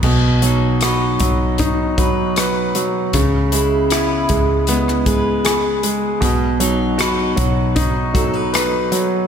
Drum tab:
CC |x---------------|----------------|----------------|
HH |--x-x-x-x-x-x-x-|x-x-x-x-x-x-x-x-|x-x-x-x-x-x-x-x-|
SD |----r-------r---|----r----r--r---|----r-------r---|
BD |o-----o-o-o-----|o-----o---o-----|o-----o-o-o-----|